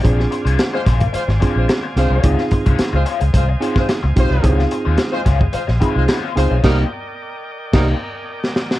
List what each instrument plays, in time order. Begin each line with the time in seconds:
Already playing: tonewheel organ D5
0.02 fingered electric bass A#1, overdriven electric guitar A#3 D4 G#4 C5, tine electric piano C4 D4 F4 G#4, tonewheel organ C5 F5 G#5, kick, closed hi-hat
0.20 snare
0.31 muted overdriven electric guitar stroke, closed hi-hat
0.45 fingered electric bass C2, overdriven electric guitar A#3 D4 G#4 C5, closed hi-hat
0.59 snare, closed hi-hat
0.73 horn section G#3 F4 C5, muted overdriven electric guitar stroke
0.85 fingered electric bass A#1, overdriven electric guitar A#3 D4 G#4 C5, kick, snare, closed hi-hat
1.00 muted overdriven electric guitar stroke, kick, closed hi-hat
1.13 horn section G#3 F4 C5, muted overdriven electric guitar stroke, muted fingered electric bass stroke, closed hi-hat
1.28 fingered electric bass G#1, muted overdriven electric guitar stroke, snare
1.40 overdriven electric guitar A#3 D4 G#4 C5, tine electric piano C4 D4 F4 G#4, kick, closed hi-hat
1.55 fingered electric bass A#1, horn section G#3 F4 C5, muted overdriven electric guitar stroke
1.68 muted overdriven electric guitar stroke, snare, closed hi-hat
1.83 muted overdriven electric guitar stroke
1.96 fingered electric bass C2, horn section G#3 F4 C5, tine electric piano C4 D4 F4 G#4, snare, closed hi-hat
2.10 fingered electric bass C2, overdriven electric guitar A#3 D4 G#4 C5
2.23 fingered electric bass C#2, overdriven electric guitar G#3 C#4 F4 C5, tine electric piano C4 D#4 F4 G#4, tonewheel organ D#5, kick, closed hi-hat
2.38 snare
2.51 muted overdriven electric guitar stroke, kick, closed hi-hat
2.66 fingered electric bass C2, overdriven electric guitar G#3 C#4 F4 C5, kick, closed hi-hat
2.79 muted fingered electric bass stroke, snare, closed hi-hat
2.93 fingered electric bass C#2, horn section G#3 F4 C5, muted overdriven electric guitar stroke
3.06 overdriven electric guitar G#3 C#4 F4 C5, closed hi-hat
3.20 fingered electric bass C#2, muted overdriven electric guitar stroke, closed hi-hat
3.33 fingered electric bass C2, horn section G#3 F4 C5, muted overdriven electric guitar stroke, kick, closed hi-hat
3.48 muted overdriven electric guitar stroke
3.60 overdriven electric guitar G#3 C#4 F4 C5, tine electric piano C4 D#4 F4 G#4, closed hi-hat
3.76 horn section G#3 F4 C5, muted overdriven electric guitar stroke, kick, snare
3.89 muted overdriven electric guitar stroke, snare, closed hi-hat
4.03 fingered electric bass C#2, muted overdriven electric guitar stroke
4.16 fingered electric bass B1, horn section G#3 F4 C5, tine electric piano C4 D#4 F4 G4, kick, closed hi-hat
4.30 fingered electric bass C2, overdriven electric guitar G#3 C#4 F4 C5
4.43 fingered electric bass C#2, overdriven electric guitar G#3 C#4 F4 C5, tine electric piano C4 D#4 E4 G#4, kick, closed hi-hat
4.50 tine electric piano F4
4.59 snare
4.71 muted overdriven electric guitar stroke, closed hi-hat
4.85 fingered electric bass D#2, overdriven electric guitar G#3 C#4 F4 C5
4.98 snare, closed hi-hat
5.12 horn section G#3 F4 C5, muted overdriven electric guitar stroke
5.25 fingered electric bass C#2, overdriven electric guitar G#3 C#4 F4 C5, kick, snare, closed hi-hat
5.39 muted overdriven electric guitar stroke, kick
5.53 horn section G#3 F4 C5, muted overdriven electric guitar stroke, muted fingered electric bass stroke, closed hi-hat
5.67 fingered electric bass A#1, muted overdriven electric guitar stroke, snare
5.80 overdriven electric guitar G#3 C#4 F4 C5, tine electric piano C4 D#4 F4 G#4, kick, closed hi-hat
5.95 fingered electric bass C2, horn section G#3 F4 C5, muted overdriven electric guitar stroke
6.08 overdriven electric guitar G#3 C#4 F4 C5, snare, closed hi-hat
6.36 fingered electric bass C#2, horn section G#3 F4 C5, tine electric piano C4 D#4 F4 G#4, muted overdriven electric guitar stroke, snare, closed hi-hat
6.50 fingered electric bass B1, overdriven electric guitar G#3 C#4 F4 C5
6.63 fingered electric bass C2, horn section G3 D#4 A#4, overdriven electric guitar A#3 D#4 G4 C5, tine electric piano A#3 D#4 G4, tonewheel organ A#4 D5 G5, kick, snare, crash
7.73 fingered electric bass C2, horn section G3 D#4 A#4, overdriven electric guitar A#3 D#4 G4 C5, tine electric piano A#3 D#4 G4, kick, snare, crash
8.44 snare
8.56 snare
8.71 snare